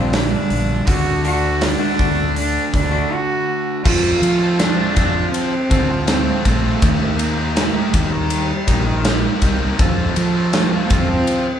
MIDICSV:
0, 0, Header, 1, 8, 480
1, 0, Start_track
1, 0, Tempo, 743494
1, 568, Time_signature, 4, 2, 24, 8
1, 7487, End_track
2, 0, Start_track
2, 0, Title_t, "Cello"
2, 0, Program_c, 0, 42
2, 0, Note_on_c, 0, 60, 95
2, 95, Note_on_c, 0, 62, 95
2, 105, Note_off_c, 0, 60, 0
2, 566, Note_on_c, 0, 66, 103
2, 576, Note_off_c, 0, 62, 0
2, 807, Note_off_c, 0, 66, 0
2, 813, Note_on_c, 0, 66, 95
2, 1055, Note_on_c, 0, 62, 105
2, 1064, Note_off_c, 0, 66, 0
2, 1530, Note_off_c, 0, 62, 0
2, 1534, Note_on_c, 0, 62, 102
2, 1756, Note_off_c, 0, 62, 0
2, 1776, Note_on_c, 0, 62, 93
2, 2016, Note_on_c, 0, 66, 95
2, 2026, Note_off_c, 0, 62, 0
2, 2373, Note_off_c, 0, 66, 0
2, 2482, Note_on_c, 0, 65, 109
2, 2964, Note_on_c, 0, 62, 100
2, 2973, Note_off_c, 0, 65, 0
2, 3436, Note_off_c, 0, 62, 0
2, 3440, Note_on_c, 0, 60, 105
2, 3899, Note_off_c, 0, 60, 0
2, 3929, Note_on_c, 0, 60, 95
2, 4152, Note_off_c, 0, 60, 0
2, 4163, Note_on_c, 0, 57, 103
2, 4649, Note_on_c, 0, 58, 87
2, 4658, Note_off_c, 0, 57, 0
2, 4890, Note_on_c, 0, 57, 87
2, 4900, Note_off_c, 0, 58, 0
2, 5130, Note_on_c, 0, 55, 95
2, 5139, Note_off_c, 0, 57, 0
2, 6087, Note_off_c, 0, 55, 0
2, 6808, Note_on_c, 0, 57, 92
2, 6895, Note_off_c, 0, 57, 0
2, 7004, Note_on_c, 0, 58, 77
2, 7047, Note_on_c, 0, 60, 109
2, 7057, Note_off_c, 0, 58, 0
2, 7487, Note_off_c, 0, 60, 0
2, 7487, End_track
3, 0, Start_track
3, 0, Title_t, "Distorted electric guitar"
3, 0, Program_c, 1, 30
3, 0, Note_on_c, 1, 43, 90
3, 0, Note_on_c, 1, 50, 87
3, 0, Note_on_c, 1, 55, 98
3, 549, Note_off_c, 1, 43, 0
3, 550, Note_off_c, 1, 50, 0
3, 558, Note_on_c, 1, 50, 97
3, 560, Note_off_c, 1, 55, 0
3, 571, Note_on_c, 1, 57, 101
3, 581, Note_on_c, 1, 62, 92
3, 2471, Note_off_c, 1, 50, 0
3, 2477, Note_off_c, 1, 57, 0
3, 2481, Note_on_c, 1, 53, 80
3, 2483, Note_off_c, 1, 62, 0
3, 2489, Note_on_c, 1, 57, 102
3, 2496, Note_on_c, 1, 60, 92
3, 2503, Note_on_c, 1, 65, 103
3, 2835, Note_off_c, 1, 65, 0
3, 2843, Note_on_c, 1, 65, 67
3, 2848, Note_off_c, 1, 60, 0
3, 2855, Note_off_c, 1, 57, 0
3, 2856, Note_on_c, 1, 60, 59
3, 2863, Note_on_c, 1, 57, 59
3, 2958, Note_off_c, 1, 53, 0
3, 2964, Note_off_c, 1, 57, 0
3, 2965, Note_on_c, 1, 53, 98
3, 2970, Note_off_c, 1, 60, 0
3, 2972, Note_on_c, 1, 57, 93
3, 2978, Note_off_c, 1, 65, 0
3, 2978, Note_on_c, 1, 60, 82
3, 2986, Note_on_c, 1, 65, 105
3, 3074, Note_off_c, 1, 65, 0
3, 3082, Note_on_c, 1, 65, 69
3, 3085, Note_off_c, 1, 60, 0
3, 3093, Note_on_c, 1, 60, 60
3, 3094, Note_off_c, 1, 57, 0
3, 3102, Note_on_c, 1, 57, 61
3, 3194, Note_off_c, 1, 53, 0
3, 3202, Note_off_c, 1, 57, 0
3, 3202, Note_on_c, 1, 53, 71
3, 3209, Note_on_c, 1, 57, 75
3, 3211, Note_off_c, 1, 60, 0
3, 3215, Note_off_c, 1, 65, 0
3, 3218, Note_on_c, 1, 60, 80
3, 3222, Note_on_c, 1, 65, 88
3, 3316, Note_off_c, 1, 65, 0
3, 3318, Note_off_c, 1, 60, 0
3, 3321, Note_off_c, 1, 57, 0
3, 3566, Note_off_c, 1, 53, 0
3, 3678, Note_on_c, 1, 53, 74
3, 3687, Note_on_c, 1, 57, 73
3, 3692, Note_on_c, 1, 60, 82
3, 3700, Note_on_c, 1, 65, 79
3, 3801, Note_off_c, 1, 65, 0
3, 3804, Note_off_c, 1, 60, 0
3, 3806, Note_off_c, 1, 57, 0
3, 3914, Note_off_c, 1, 53, 0
3, 3922, Note_on_c, 1, 53, 85
3, 3931, Note_on_c, 1, 57, 88
3, 3936, Note_on_c, 1, 60, 106
3, 3943, Note_on_c, 1, 65, 92
3, 4154, Note_off_c, 1, 53, 0
3, 4161, Note_on_c, 1, 53, 78
3, 4162, Note_off_c, 1, 57, 0
3, 4168, Note_off_c, 1, 60, 0
3, 4170, Note_on_c, 1, 57, 85
3, 4174, Note_off_c, 1, 65, 0
3, 4176, Note_on_c, 1, 60, 88
3, 4182, Note_on_c, 1, 65, 86
3, 4274, Note_off_c, 1, 65, 0
3, 4282, Note_on_c, 1, 65, 66
3, 4287, Note_off_c, 1, 60, 0
3, 4295, Note_on_c, 1, 60, 64
3, 4296, Note_off_c, 1, 57, 0
3, 4304, Note_on_c, 1, 57, 61
3, 4391, Note_off_c, 1, 53, 0
3, 4391, Note_off_c, 1, 65, 0
3, 4396, Note_on_c, 1, 51, 82
3, 4398, Note_off_c, 1, 60, 0
3, 4402, Note_off_c, 1, 57, 0
3, 4405, Note_on_c, 1, 58, 95
3, 4413, Note_on_c, 1, 63, 97
3, 4419, Note_on_c, 1, 67, 105
3, 4754, Note_off_c, 1, 67, 0
3, 4762, Note_on_c, 1, 67, 67
3, 4763, Note_off_c, 1, 63, 0
3, 4771, Note_on_c, 1, 63, 63
3, 4773, Note_off_c, 1, 58, 0
3, 4780, Note_on_c, 1, 58, 54
3, 4868, Note_off_c, 1, 51, 0
3, 4875, Note_on_c, 1, 51, 84
3, 4877, Note_off_c, 1, 58, 0
3, 4883, Note_off_c, 1, 63, 0
3, 4885, Note_on_c, 1, 58, 86
3, 4890, Note_off_c, 1, 67, 0
3, 4890, Note_on_c, 1, 63, 96
3, 4897, Note_on_c, 1, 67, 95
3, 4990, Note_off_c, 1, 67, 0
3, 4998, Note_on_c, 1, 67, 73
3, 5002, Note_off_c, 1, 63, 0
3, 5010, Note_on_c, 1, 63, 68
3, 5012, Note_off_c, 1, 58, 0
3, 5020, Note_on_c, 1, 58, 66
3, 5111, Note_off_c, 1, 51, 0
3, 5119, Note_on_c, 1, 51, 77
3, 5120, Note_off_c, 1, 58, 0
3, 5126, Note_off_c, 1, 63, 0
3, 5128, Note_on_c, 1, 58, 75
3, 5131, Note_off_c, 1, 67, 0
3, 5133, Note_on_c, 1, 63, 84
3, 5139, Note_on_c, 1, 67, 85
3, 5235, Note_off_c, 1, 67, 0
3, 5237, Note_off_c, 1, 63, 0
3, 5241, Note_off_c, 1, 58, 0
3, 5483, Note_off_c, 1, 51, 0
3, 5598, Note_on_c, 1, 51, 75
3, 5608, Note_on_c, 1, 58, 86
3, 5613, Note_on_c, 1, 63, 75
3, 5619, Note_on_c, 1, 67, 85
3, 5720, Note_off_c, 1, 67, 0
3, 5721, Note_off_c, 1, 63, 0
3, 5723, Note_off_c, 1, 58, 0
3, 5834, Note_off_c, 1, 51, 0
3, 5841, Note_on_c, 1, 51, 83
3, 5848, Note_on_c, 1, 58, 93
3, 5856, Note_on_c, 1, 63, 97
3, 5861, Note_on_c, 1, 67, 90
3, 6074, Note_off_c, 1, 51, 0
3, 6081, Note_off_c, 1, 58, 0
3, 6082, Note_on_c, 1, 51, 79
3, 6089, Note_off_c, 1, 63, 0
3, 6089, Note_on_c, 1, 58, 86
3, 6094, Note_off_c, 1, 67, 0
3, 6097, Note_on_c, 1, 63, 91
3, 6102, Note_on_c, 1, 67, 99
3, 6191, Note_off_c, 1, 67, 0
3, 6199, Note_on_c, 1, 67, 71
3, 6203, Note_off_c, 1, 63, 0
3, 6211, Note_on_c, 1, 63, 58
3, 6213, Note_off_c, 1, 58, 0
3, 6221, Note_on_c, 1, 58, 57
3, 6308, Note_off_c, 1, 67, 0
3, 6310, Note_off_c, 1, 51, 0
3, 6314, Note_off_c, 1, 63, 0
3, 6317, Note_on_c, 1, 53, 98
3, 6319, Note_off_c, 1, 58, 0
3, 6325, Note_on_c, 1, 57, 90
3, 6333, Note_on_c, 1, 60, 107
3, 6338, Note_on_c, 1, 65, 109
3, 6671, Note_off_c, 1, 65, 0
3, 6679, Note_on_c, 1, 65, 75
3, 6684, Note_off_c, 1, 60, 0
3, 6692, Note_on_c, 1, 60, 64
3, 6694, Note_off_c, 1, 57, 0
3, 6702, Note_on_c, 1, 57, 55
3, 6793, Note_off_c, 1, 53, 0
3, 6801, Note_off_c, 1, 57, 0
3, 6801, Note_on_c, 1, 53, 97
3, 6806, Note_off_c, 1, 60, 0
3, 6809, Note_on_c, 1, 57, 101
3, 6811, Note_off_c, 1, 65, 0
3, 6813, Note_on_c, 1, 60, 95
3, 6819, Note_on_c, 1, 65, 90
3, 6914, Note_off_c, 1, 65, 0
3, 6922, Note_on_c, 1, 65, 74
3, 6924, Note_off_c, 1, 60, 0
3, 6932, Note_on_c, 1, 60, 73
3, 6936, Note_off_c, 1, 57, 0
3, 6944, Note_on_c, 1, 57, 60
3, 7028, Note_off_c, 1, 53, 0
3, 7036, Note_off_c, 1, 57, 0
3, 7036, Note_on_c, 1, 53, 75
3, 7044, Note_on_c, 1, 57, 70
3, 7045, Note_off_c, 1, 60, 0
3, 7049, Note_off_c, 1, 65, 0
3, 7053, Note_on_c, 1, 60, 82
3, 7057, Note_on_c, 1, 65, 88
3, 7156, Note_off_c, 1, 60, 0
3, 7156, Note_off_c, 1, 65, 0
3, 7160, Note_off_c, 1, 57, 0
3, 7399, Note_off_c, 1, 53, 0
3, 7487, End_track
4, 0, Start_track
4, 0, Title_t, "Clean electric guitar"
4, 0, Program_c, 2, 27
4, 0, Note_on_c, 2, 50, 69
4, 0, Note_on_c, 2, 55, 72
4, 0, Note_on_c, 2, 62, 77
4, 0, Note_on_c, 2, 65, 79
4, 120, Note_off_c, 2, 65, 0
4, 122, Note_off_c, 2, 55, 0
4, 122, Note_off_c, 2, 62, 0
4, 124, Note_off_c, 2, 50, 0
4, 802, Note_on_c, 2, 50, 82
4, 806, Note_on_c, 2, 57, 81
4, 808, Note_on_c, 2, 62, 91
4, 810, Note_on_c, 2, 66, 96
4, 962, Note_off_c, 2, 50, 0
4, 963, Note_off_c, 2, 57, 0
4, 964, Note_off_c, 2, 62, 0
4, 965, Note_off_c, 2, 66, 0
4, 1157, Note_on_c, 2, 66, 85
4, 1160, Note_on_c, 2, 62, 68
4, 1165, Note_on_c, 2, 57, 67
4, 1166, Note_on_c, 2, 50, 68
4, 1275, Note_off_c, 2, 50, 0
4, 1276, Note_off_c, 2, 57, 0
4, 1279, Note_off_c, 2, 62, 0
4, 1283, Note_off_c, 2, 66, 0
4, 1283, Note_on_c, 2, 50, 79
4, 1284, Note_on_c, 2, 57, 78
4, 1287, Note_on_c, 2, 62, 82
4, 1290, Note_on_c, 2, 66, 92
4, 1442, Note_off_c, 2, 50, 0
4, 1443, Note_off_c, 2, 57, 0
4, 1444, Note_off_c, 2, 62, 0
4, 1446, Note_off_c, 2, 66, 0
4, 1880, Note_on_c, 2, 66, 85
4, 1882, Note_on_c, 2, 62, 85
4, 1884, Note_on_c, 2, 57, 76
4, 1888, Note_on_c, 2, 50, 63
4, 2041, Note_off_c, 2, 66, 0
4, 2042, Note_off_c, 2, 62, 0
4, 2043, Note_off_c, 2, 57, 0
4, 2045, Note_off_c, 2, 50, 0
4, 7487, End_track
5, 0, Start_track
5, 0, Title_t, "Fingered electric bass"
5, 0, Program_c, 3, 33
5, 0, Note_on_c, 3, 34, 78
5, 219, Note_off_c, 3, 34, 0
5, 326, Note_on_c, 3, 34, 86
5, 513, Note_off_c, 3, 34, 0
5, 566, Note_on_c, 3, 38, 117
5, 1126, Note_off_c, 3, 38, 0
5, 1288, Note_on_c, 3, 38, 80
5, 1661, Note_off_c, 3, 38, 0
5, 1769, Note_on_c, 3, 38, 84
5, 1956, Note_off_c, 3, 38, 0
5, 2489, Note_on_c, 3, 41, 91
5, 2676, Note_off_c, 3, 41, 0
5, 2723, Note_on_c, 3, 53, 99
5, 3098, Note_off_c, 3, 53, 0
5, 3206, Note_on_c, 3, 41, 86
5, 3394, Note_off_c, 3, 41, 0
5, 3686, Note_on_c, 3, 38, 77
5, 4060, Note_off_c, 3, 38, 0
5, 4167, Note_on_c, 3, 34, 96
5, 4354, Note_off_c, 3, 34, 0
5, 4405, Note_on_c, 3, 39, 107
5, 4965, Note_off_c, 3, 39, 0
5, 5124, Note_on_c, 3, 39, 97
5, 5498, Note_off_c, 3, 39, 0
5, 5602, Note_on_c, 3, 34, 84
5, 5976, Note_off_c, 3, 34, 0
5, 6083, Note_on_c, 3, 36, 91
5, 6270, Note_off_c, 3, 36, 0
5, 6325, Note_on_c, 3, 41, 104
5, 6511, Note_off_c, 3, 41, 0
5, 6565, Note_on_c, 3, 53, 92
5, 6937, Note_off_c, 3, 53, 0
5, 7039, Note_on_c, 3, 41, 90
5, 7227, Note_off_c, 3, 41, 0
5, 7487, End_track
6, 0, Start_track
6, 0, Title_t, "Muted clean electric guitar strokes"
6, 205, Note_on_c, 9, 29, 48
6, 269, Note_off_c, 9, 29, 0
6, 686, Note_on_c, 9, 29, 48
6, 751, Note_off_c, 9, 29, 0
6, 1043, Note_on_c, 9, 29, 44
6, 1107, Note_off_c, 9, 29, 0
6, 1523, Note_on_c, 9, 29, 52
6, 1588, Note_off_c, 9, 29, 0
6, 2126, Note_on_c, 9, 29, 46
6, 2191, Note_off_c, 9, 29, 0
6, 7487, End_track
7, 0, Start_track
7, 0, Title_t, "Muted distorted electric guitar strokes"
7, 3324, Note_on_c, 9, 29, 57
7, 3388, Note_off_c, 9, 29, 0
7, 3809, Note_on_c, 9, 29, 53
7, 3873, Note_off_c, 9, 29, 0
7, 5242, Note_on_c, 9, 29, 54
7, 5307, Note_off_c, 9, 29, 0
7, 5728, Note_on_c, 9, 29, 57
7, 5792, Note_off_c, 9, 29, 0
7, 7164, Note_on_c, 9, 29, 50
7, 7229, Note_off_c, 9, 29, 0
7, 7487, End_track
8, 0, Start_track
8, 0, Title_t, "Drums"
8, 85, Note_on_c, 9, 46, 68
8, 88, Note_on_c, 9, 38, 106
8, 149, Note_off_c, 9, 46, 0
8, 153, Note_off_c, 9, 38, 0
8, 325, Note_on_c, 9, 46, 53
8, 390, Note_off_c, 9, 46, 0
8, 561, Note_on_c, 9, 46, 78
8, 566, Note_on_c, 9, 36, 99
8, 626, Note_off_c, 9, 46, 0
8, 630, Note_off_c, 9, 36, 0
8, 805, Note_on_c, 9, 46, 56
8, 870, Note_off_c, 9, 46, 0
8, 1042, Note_on_c, 9, 46, 78
8, 1045, Note_on_c, 9, 38, 106
8, 1106, Note_off_c, 9, 46, 0
8, 1110, Note_off_c, 9, 38, 0
8, 1286, Note_on_c, 9, 46, 52
8, 1287, Note_on_c, 9, 36, 85
8, 1351, Note_off_c, 9, 36, 0
8, 1351, Note_off_c, 9, 46, 0
8, 1526, Note_on_c, 9, 46, 69
8, 1591, Note_off_c, 9, 46, 0
8, 1767, Note_on_c, 9, 36, 79
8, 1768, Note_on_c, 9, 46, 54
8, 1832, Note_off_c, 9, 36, 0
8, 1833, Note_off_c, 9, 46, 0
8, 2489, Note_on_c, 9, 36, 102
8, 2490, Note_on_c, 9, 49, 118
8, 2553, Note_off_c, 9, 36, 0
8, 2555, Note_off_c, 9, 49, 0
8, 2731, Note_on_c, 9, 51, 70
8, 2795, Note_off_c, 9, 51, 0
8, 2966, Note_on_c, 9, 51, 96
8, 2969, Note_on_c, 9, 38, 99
8, 3031, Note_off_c, 9, 51, 0
8, 3034, Note_off_c, 9, 38, 0
8, 3205, Note_on_c, 9, 51, 72
8, 3207, Note_on_c, 9, 36, 87
8, 3269, Note_off_c, 9, 51, 0
8, 3272, Note_off_c, 9, 36, 0
8, 3448, Note_on_c, 9, 51, 92
8, 3513, Note_off_c, 9, 51, 0
8, 3686, Note_on_c, 9, 36, 89
8, 3686, Note_on_c, 9, 51, 67
8, 3751, Note_off_c, 9, 36, 0
8, 3751, Note_off_c, 9, 51, 0
8, 3922, Note_on_c, 9, 51, 103
8, 3925, Note_on_c, 9, 38, 111
8, 3986, Note_off_c, 9, 51, 0
8, 3990, Note_off_c, 9, 38, 0
8, 4166, Note_on_c, 9, 51, 72
8, 4167, Note_on_c, 9, 36, 84
8, 4230, Note_off_c, 9, 51, 0
8, 4231, Note_off_c, 9, 36, 0
8, 4404, Note_on_c, 9, 51, 97
8, 4406, Note_on_c, 9, 36, 105
8, 4468, Note_off_c, 9, 51, 0
8, 4470, Note_off_c, 9, 36, 0
8, 4643, Note_on_c, 9, 51, 78
8, 4708, Note_off_c, 9, 51, 0
8, 4884, Note_on_c, 9, 51, 99
8, 4887, Note_on_c, 9, 38, 108
8, 4948, Note_off_c, 9, 51, 0
8, 4952, Note_off_c, 9, 38, 0
8, 5124, Note_on_c, 9, 51, 79
8, 5125, Note_on_c, 9, 36, 86
8, 5189, Note_off_c, 9, 36, 0
8, 5189, Note_off_c, 9, 51, 0
8, 5360, Note_on_c, 9, 51, 106
8, 5425, Note_off_c, 9, 51, 0
8, 5602, Note_on_c, 9, 51, 75
8, 5603, Note_on_c, 9, 36, 83
8, 5666, Note_off_c, 9, 51, 0
8, 5667, Note_off_c, 9, 36, 0
8, 5840, Note_on_c, 9, 51, 94
8, 5843, Note_on_c, 9, 38, 111
8, 5904, Note_off_c, 9, 51, 0
8, 5908, Note_off_c, 9, 38, 0
8, 6079, Note_on_c, 9, 51, 69
8, 6082, Note_on_c, 9, 36, 82
8, 6082, Note_on_c, 9, 38, 30
8, 6144, Note_off_c, 9, 51, 0
8, 6147, Note_off_c, 9, 36, 0
8, 6147, Note_off_c, 9, 38, 0
8, 6321, Note_on_c, 9, 51, 89
8, 6323, Note_on_c, 9, 36, 116
8, 6386, Note_off_c, 9, 51, 0
8, 6387, Note_off_c, 9, 36, 0
8, 6561, Note_on_c, 9, 51, 74
8, 6625, Note_off_c, 9, 51, 0
8, 6799, Note_on_c, 9, 51, 87
8, 6802, Note_on_c, 9, 38, 107
8, 6864, Note_off_c, 9, 51, 0
8, 6867, Note_off_c, 9, 38, 0
8, 7038, Note_on_c, 9, 51, 72
8, 7041, Note_on_c, 9, 36, 96
8, 7103, Note_off_c, 9, 51, 0
8, 7106, Note_off_c, 9, 36, 0
8, 7278, Note_on_c, 9, 51, 88
8, 7342, Note_off_c, 9, 51, 0
8, 7487, End_track
0, 0, End_of_file